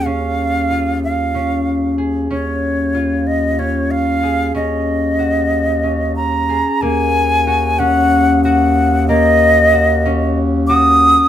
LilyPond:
<<
  \new Staff \with { instrumentName = "Flute" } { \time 7/8 \key ees \minor \tempo 4 = 93 f''4. f''4. r8 | des''4. ees''8 des''8 f''4 | ees''2~ ees''8 bes''4 | aes''4. ges''4 ges''4 |
ees''2 r8 ees'''4 | }
  \new Staff \with { instrumentName = "Harp" } { \time 7/8 \key ees \minor des'4 f'4 des'4 aes'8 | des'4 f'4 des'4 aes'8 | des'4 ges'4 des'4 aes'8 | bes4 ges'8 des'4 ges'4 |
bes4 ges'8 des'4 ges'4 | }
  \new Staff \with { instrumentName = "Bass clarinet" } { \clef bass \time 7/8 \key ees \minor ees,2.~ ees,8 | ees,2.~ ees,8 | ees,2.~ ees,8 | ees,2.~ ees,8~ |
ees,2.~ ees,8 | }
>>